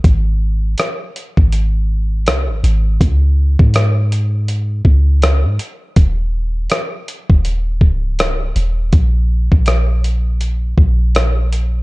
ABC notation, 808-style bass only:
X:1
M:4/4
L:1/16
Q:"Swing 16ths" 1/4=81
K:Db
V:1 name="808-style bass" clef=bass
A,,,4 z3 A,,,4- A,,, C,, A,,, A,,,2 | D,,3 A,,6- A,, D,,3 A,, z2 | E,,,4 z3 E,,,3 D,,,4 E,,,2 | B,,,3 B,,,6- B,,, B,,,6 |]